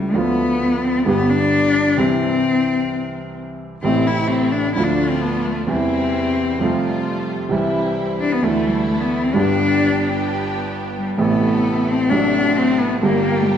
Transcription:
Already playing: C#3 G3 A3 E4
0.12 D2 D3 F3 A3 B3
0.17 F4
0.86 C4
1.04 G1 G2 D3 G3 B3
1.09 G4
1.30 D4
1.96 C2 C3 E3 G3 C4 E4
3.83 A1 A2 C3 E3 A3 C4 E4
4.07 E4
4.27 C4
4.52 D4
4.75 D2 D3 F3 A3 D4 E4 F4
4.79 F4
4.84 D4
5.10 C4
5.22 B3
5.45 A3
5.67 E2 C3 E3 G3 C4 E4
5.71 E4
6.59 F2 C3 F3 G3 A3 F4
6.63 F4
7.49 C2 C3 E3 G3 C4 E4
8.21 D4
8.32 B3
8.41 D2 D3 E3 A3 D4 E4
8.45 E4
8.67 G3
8.89 A3
9.00 B3
9.24 C4
9.33 G1 G2 D3 G3 B3 D4 G4
10.97 G3
11.17 A1 A2 C3 E3 A3 B3 E4 A4
11.21 E4
11.89 C4
12.09 A1 A2 C3 F#3 A3 C4 D4 F#4
12.13 D4
12.57 C4
12.78 B3
13.01 G1 G2 D3 G3 A#3 D4 G4
13.48 G3

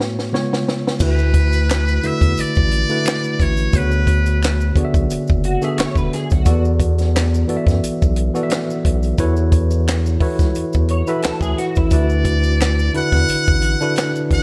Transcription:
Already playing: A2 A3 B3 F#4 C#5
0.01 snare
0.19 snare
0.32 C#3 G#3 B3 F4 C#5, snare
0.53 snare
0.69 snare
0.87 snare
1.00 D2 D3 A3 E4 F#4 B4, kick, crash, maracas
1.05 B4
1.18 maracas
1.34 kick, closed hi-hat, maracas
1.53 closed hi-hat, maracas
1.70 finger snap, snare, clap, closed hi-hat, maracas
1.88 maracas
2.03 E2 D3 A3 E4 F#4 B4 E5, closed hi-hat
2.21 E2, kick, closed hi-hat, maracas
2.37 A1 D5, closed hi-hat, maracas
2.55 A1, kick, maracas
2.71 closed hi-hat
2.89 D3 A3 E4 F#4 B4, closed hi-hat, maracas
3.05 finger snap, snare, clap, closed hi-hat, maracas
3.24 maracas
3.40 A1 C#5, kick, snare, closed hi-hat
3.57 closed hi-hat, maracas
3.73 D2 C#3 B3 F#4 G#4 B4 C#5, kick, closed hi-hat, maracas
3.80 D3
3.92 maracas
4.07 kick, closed hi-hat, maracas
4.26 closed hi-hat, maracas
4.43 finger snap, snare, clap, closed hi-hat, maracas
4.61 maracas
4.76 B1 D3 B3 F#4 G#4 D5, kick, closed hi-hat
4.85 E5
4.94 B1, kick, closed hi-hat, maracas
5.10 F#1, closed hi-hat, maracas
5.28 F#1, kick, maracas
5.44 F#4, closed hi-hat
5.62 D3 B3 F#4 G#4 E5, closed hi-hat, maracas
5.78 E1 C#5, finger snap, snare, clap, closed hi-hat, maracas
5.95 E1 B4, kick, maracas
6.13 G#4, snare, closed hi-hat
6.30 B1 F#4, kick, closed hi-hat, maracas
6.45 E2 E3 B3 F#4 A4 D5, kick, closed hi-hat, maracas
6.65 maracas
6.80 kick, closed hi-hat, maracas
6.98 snare, closed hi-hat, maracas
7.16 finger snap, snare, clap, closed hi-hat, maracas
7.34 maracas
7.48 F#2 E3 B3 F#4 A4 D5, closed hi-hat
7.57 E5
7.67 F#2, kick, snare, closed hi-hat, maracas
7.83 B1, closed hi-hat, maracas
8.02 B1, kick, maracas
8.16 closed hi-hat
8.34 E3 B3 F#4 A4 D5, closed hi-hat, maracas
8.43 E5
8.50 finger snap, snare, clap, closed hi-hat, maracas
8.70 maracas
8.85 B1, kick, closed hi-hat
9.03 closed hi-hat, maracas
9.18 E2 E3 E4 F#4 A4 B4 C#5, kick, closed hi-hat, maracas
9.37 maracas
9.52 kick, closed hi-hat, maracas
9.71 maracas
9.88 finger snap, snare, clap, closed hi-hat, maracas
10.06 maracas
10.20 C#2 E3 E4 F#4 A4 B4 C#5, kick, open hi-hat
10.39 C#2, kick, snare, closed hi-hat, maracas
10.55 E2, closed hi-hat, maracas
10.73 E2, kick, maracas
10.88 C#5, closed hi-hat
11.07 E3 E4 F#4 A4 B4 E5, closed hi-hat, maracas
11.22 D2 A4, finger snap, snare, clap, closed hi-hat, maracas
11.41 D2 G#4, kick, maracas
11.58 F#4, snare, closed hi-hat
11.75 A1 E4, kick, maracas
11.91 D2 D3 D4 E4 F#4 B4 D5, kick, closed hi-hat, maracas
12.09 maracas
12.25 kick, closed hi-hat, maracas
12.43 maracas
12.61 finger snap, snare, clap, closed hi-hat, maracas
12.79 maracas
12.94 E2 D3 D4 E4 F#4 B4 F#5, closed hi-hat
13.12 E2, kick, snare, maracas
13.28 A1, closed hi-hat, maracas
13.46 A1, kick, maracas
13.62 closed hi-hat
13.81 D3 D4 E4 F#4 B4, closed hi-hat, maracas
13.96 finger snap, snare, clap, closed hi-hat, maracas
14.15 maracas
14.31 A1 F#5, kick, snare, closed hi-hat

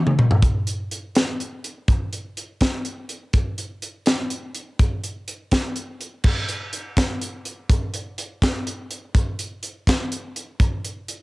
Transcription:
0.07 mid tom
0.19 mid tom
0.31 floor tom
0.42 kick, closed hi-hat
0.67 closed hi-hat
0.91 closed hi-hat
1.15 snare, closed hi-hat
1.40 closed hi-hat
1.64 closed hi-hat
1.88 kick, closed hi-hat
2.13 closed hi-hat
2.37 closed hi-hat
2.61 kick, snare, closed hi-hat
2.85 closed hi-hat
3.09 closed hi-hat
3.33 kick, closed hi-hat
3.58 closed hi-hat
3.82 closed hi-hat
4.06 snare, closed hi-hat
4.30 closed hi-hat
4.55 closed hi-hat
4.79 kick, closed hi-hat
5.04 closed hi-hat
5.28 closed hi-hat
5.51 kick, snare, closed hi-hat
5.76 closed hi-hat
6.01 closed hi-hat
6.24 kick, crash
6.49 closed hi-hat
6.73 closed hi-hat
6.97 kick, snare, closed hi-hat
7.21 closed hi-hat
7.45 closed hi-hat
7.69 kick, closed hi-hat
7.94 closed hi-hat
8.18 closed hi-hat
8.42 kick, snare, closed hi-hat
8.67 closed hi-hat
8.90 closed hi-hat
9.15 kick, closed hi-hat
9.39 closed hi-hat
9.63 closed hi-hat
9.87 kick, snare, closed hi-hat
10.12 closed hi-hat
10.36 closed hi-hat
10.60 kick, closed hi-hat
10.85 closed hi-hat
11.08 closed hi-hat

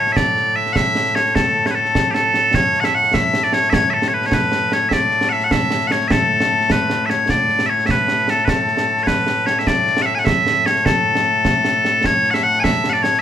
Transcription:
Already playing: A2 A3 C#5
0.07 snare
0.12 E5
0.17 D5, concert bass drum, snare
0.37 snare
0.56 E5
0.66 snare
0.73 E5 F#5, concert bass drum, snare
0.95 snare
1.06 snare
1.15 C#5, snare
1.26 snare
1.35 A4, concert bass drum, snare
1.66 C#5, snare
1.70 B4
1.75 A4
1.85 snare
1.95 concert bass drum, snare
2.11 G4 A4, snare
2.34 snare
2.54 C#5, concert bass drum, snare
2.74 snare
2.80 F#5, snare
2.85 E5
2.95 F#5
3.04 snare
3.14 E5, concert bass drum, snare
3.34 snare
3.43 D5, snare
3.53 C#5, snare
3.63 snare
3.70 E5, concert bass drum, snare
3.74 C#5
3.90 A4 E5
4.02 snare
4.08 C#5
4.14 B4
4.22 C#5, snare
4.32 B4, concert bass drum, snare
4.52 snare
4.72 C#5, snare
4.89 E5, concert bass drum, snare
4.93 D5
5.11 snare
5.21 snare
5.29 E5 F#5
5.40 F#5, snare
5.51 E5, concert bass drum, snare
5.71 snare
5.81 snare
5.87 F#5, snare
5.92 C#5
6.01 snare
6.08 A4 E5, concert bass drum, snare
6.40 snare
6.61 snare
6.70 B4, concert bass drum, snare
6.90 snare
7.06 E5, snare
7.10 C#5
7.29 D5, concert bass drum, snare
7.49 snare
7.59 snare
7.66 C#5 E5
7.79 snare
7.86 E5, concert bass drum, snare
7.91 B4
8.08 snare
8.18 snare
8.28 A4, snare
8.38 snare
8.45 B4, concert bass drum, snare
8.50 A4
8.68 snare
8.77 snare
8.98 snare
9.03 B4 C#5
9.07 concert bass drum, snare
9.27 snare
9.46 C#5, snare
9.59 E5
9.67 D5, concert bass drum, snare
9.87 snare
9.97 snare
10.02 E5 F#5
10.15 G#5, snare
10.19 F#5
10.25 E5, concert bass drum, snare
10.47 snare
10.66 C#5, snare
10.76 snare
10.85 A4, concert bass drum, snare
11.15 snare
11.45 concert bass drum, snare
11.65 snare
11.85 snare
12.04 C#5, concert bass drum, snare
12.24 snare
12.31 E5 F#5, snare
12.43 F#5
12.54 snare
12.60 E5 G#5
12.64 concert bass drum, snare
12.84 snare
12.90 D5 F#5
12.94 snare
13.03 C#5, snare
13.14 snare

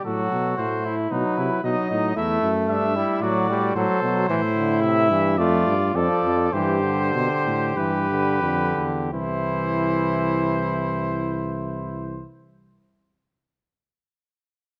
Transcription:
0.05 A2 F#3 F#4 A4
0.32 B2
0.57 A2 A3 C5
0.85 E4
1.11 B2 F#3 D#4 B4
1.38 C3 E4
1.63 B2 F#3 D#4 D#5
1.91 A2 D#4
2.16 E2 A3 E4 E5
2.42 F#2
2.69 G2 D4 E5
2.96 G3 E4
3.21 A2 F#3 F#4 D5
3.50 G3
3.75 A2 F#3 A4 C5
4.02 B2 F#3
4.29 A2 E3 E4 C5
4.56 D3
4.82 C3 E5
5.10 G2 E3
5.37 F2 A3 F4 D5
5.67 G2
5.94 F2 F3 A4 D5
6.24 F2
6.53 G2 E3 G4 C5
6.83 D3
7.13 B2 G4
7.46 A2
7.76 G2 E3 B4
8.10 D3
8.42 F2 D3
8.77 E2
9.12 C2 E3 E4 C5

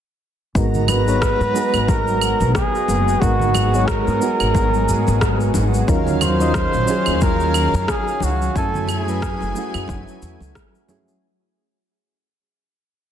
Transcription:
0.55 G#1 G#3 B3 D#4 F#4 A#4 A#5, kick, shaker
0.74 low conga, shaker
0.88 B4, high conga, claves, shaker
1.07 G#3 B3 D#4 F#4 C#5, shaker
1.22 kick, cross-stick, shaker
1.41 G#2, high conga, shaker
1.53 G#3 B3 D#4 F#4 G#4, shaker
1.74 G#1, claves, shaker
1.88 A#4, kick, high conga, shaker
2.08 shaker
2.21 claves, shaker
2.40 B1, high conga, shaker
2.55 G#4, kick, cross-stick, shaker
2.75 shaker
2.88 F#1, high conga, shaker
3.08 shaker
3.21 G#1 G#3 B3 D#4 F#4 G#4 A#4, kick, shaker
3.40 low conga, shaker
3.54 high conga, claves, shaker
3.73 G#3 B3 D#4 F#4 C#5, shaker
3.87 A#4, kick, cross-stick, shaker
4.07 G#2, high conga, shaker
4.20 G#3 B3 D#4 F#4, shaker
4.24 G#4
4.40 G#1, claves, shaker
4.54 kick, high conga, shaker
4.74 shaker
4.89 G#2, shaker
5.07 G#1, high conga, shaker
5.21 kick, cross-stick, shaker
5.41 shaker
5.54 G#1, high conga, shaker
5.74 shaker
5.87 D#2 D#3 F#3 C#4 D#4 F4 A#4 F5, kick, shaker
6.07 low conga, shaker
6.21 C5, high conga, claves, shaker
6.40 F#3 C#4 D#4 F4 D#5, shaker
6.54 kick, cross-stick, shaker
6.73 A#1, high conga, shaker
6.86 F#3 C#4 D#4 F4, shaker
6.90 G#4
7.06 D#2, claves, shaker
7.21 A#4, kick, high conga, shaker
7.40 shaker
7.54 claves, shaker
7.73 F#2, high conga, shaker
7.88 G#4, kick, cross-stick, shaker
8.08 shaker
8.20 C#2 F#4, high conga, shaker
8.42 shaker
8.55 F#2 F#3 A3 C#4 E4 A4 G#5, kick, shaker
8.74 low conga, shaker
8.88 G#4, high conga, claves, shaker
9.07 F#3 A3 C#4 E4 B4, shaker
9.22 kick, cross-stick, shaker
9.41 F#1, high conga, shaker
9.54 F#3 A3 C#4 E4 F#4, shaker
9.74 F#2, claves, shaker
9.88 F#1, kick, high conga, shaker
10.08 shaker
10.22 E2, shaker
10.40 C#2, high conga, shaker
10.55 kick, cross-stick, shaker
10.75 shaker
10.88 F#3 A3 C#4 E4 G#4, high conga, shaker
11.08 shaker

